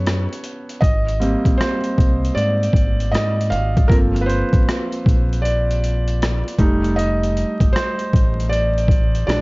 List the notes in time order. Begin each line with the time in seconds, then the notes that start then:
Already playing: F#2 B3 C#4 G4 B4 C#5
0.07 cross-stick, closed hi-hat
0.33 closed hi-hat
0.44 closed hi-hat
0.69 closed hi-hat
0.81 G#1 D#5, kick, closed hi-hat
1.08 closed hi-hat
1.20 G3 A#3 C4, closed hi-hat
1.45 A#1, kick, closed hi-hat
1.58 C5, cross-stick, closed hi-hat
1.84 closed hi-hat
1.98 C2, kick, closed hi-hat
2.25 closed hi-hat
2.35 G#2 D5, closed hi-hat
2.63 closed hi-hat
2.73 G#1, kick, closed hi-hat
3.00 closed hi-hat
3.11 G#2 D#5, cross-stick, closed hi-hat
3.41 closed hi-hat
3.50 G#1 F5, closed hi-hat
3.77 kick, closed hi-hat
3.88 G1 F3 A#3 C4 A4 A#4, kick, closed hi-hat
4.16 closed hi-hat
4.21 B4
4.26 C5, closed hi-hat
4.53 A1, kick, closed hi-hat
4.69 cross-stick, closed hi-hat
4.92 closed hi-hat
5.06 A#1, kick, closed hi-hat
5.33 closed hi-hat
5.42 D5, closed hi-hat
5.71 closed hi-hat
5.84 closed hi-hat
6.08 closed hi-hat
6.22 cross-stick, closed hi-hat
6.48 closed hi-hat
6.58 F1 G3 A3 D#4, kick, closed hi-hat
6.84 closed hi-hat
6.96 D#5, closed hi-hat
7.23 closed hi-hat
7.37 closed hi-hat
7.60 G1, kick, closed hi-hat
7.73 C5, cross-stick, closed hi-hat
7.99 closed hi-hat
8.13 A1, kick, closed hi-hat
8.40 closed hi-hat
8.49 D5, closed hi-hat
8.78 closed hi-hat
8.88 kick, closed hi-hat
9.15 closed hi-hat
9.27 A#1 F#3 G#3 D4 D5, cross-stick, closed hi-hat